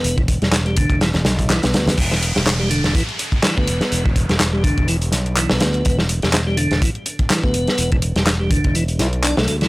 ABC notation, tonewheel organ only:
X:1
M:4/4
L:1/16
Q:"Swing 16ths" 1/4=124
K:Em
V:1 name="Tonewheel organ" clef=bass
B, E, z G, z G, D,2 E, z3 E, B,3 | z E, z G, z G, D,2 E, z3 E, B,3- | B, E, z G, z G, D,2 E, z3 E, B,3- | B, E, z G, z G, D,2 E, z3 E, B,3- |
B, E, z G, z G, D,2 E, z E z D A, A, E, |]